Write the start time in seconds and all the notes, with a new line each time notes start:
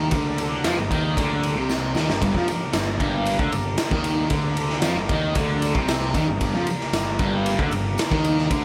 Already playing: D#3 G3 A#3 D4 A#4
0.11 D2 D3, kick, ride, tambourine
0.38 ride, tambourine
0.64 F2 F3, snare, ride, tambourine
0.77 G1 G2
0.91 D#2 D#3, kick, ride
1.17 D2 D3, kick, ride, tambourine
1.43 ride, tambourine
1.56 C2 C3
1.69 snare, tambourine
1.94 D#2 D#3, snare, tambourine
2.08 G1 G2, snare
2.21 G1 G2, kick, ride
2.34 F2 F3, kick
2.47 muted distorted electric guitar stroke, muted picked electric bass stroke, ride, tambourine
2.73 G1 G2, snare, ride, tambourine
2.99 G1 G2, kick, ride
3.25 ride, tambourine
3.39 D2 D3, kick
3.51 G1 G2, ride, tambourine
3.78 snare, ride, tambourine
3.91 D#2 D#3, kick
4.04 ride, tambourine
4.30 D2 D3, kick, ride
4.57 ride
4.70 snare
4.82 F2 F3, snare, ride, tambourine
4.95 G1 G2
5.09 D#2 D#3, kick, ride
5.35 D2 D3, kick, ride, tambourine
5.62 ride, tambourine
5.75 C2 C3, kick
5.88 snare, ride, tambourine
6.14 D#2 D#3, kick, ride, tambourine
6.28 G1 G2
6.41 G1 G2, kick, ride
6.54 F2 F3
6.66 muted picked electric bass stroke, muted distorted electric guitar stroke, ride, tambourine
6.80 snare
6.93 G1 G2, snare, ride, tambourine
7.19 G1 G2, kick, ride
7.46 ride, tambourine
7.58 D2 D3, kick
7.70 G1 G2, ride, tambourine
7.98 snare, ride, tambourine
8.10 D#2 D#3, kick
8.24 ride, tambourine
8.38 snare
8.50 D2 D3, kick, ride, tambourine